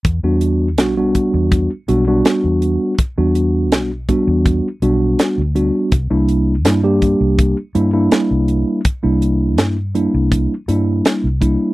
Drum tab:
HH |xxxxxxxx|xxxxxxxx|xxxxxxxx|xxxxxxxx|
SD |--o---o-|--o---o-|--o---o-|--o---o-|
BD |o--oo---|o--oo---|o--oo---|o---o--o|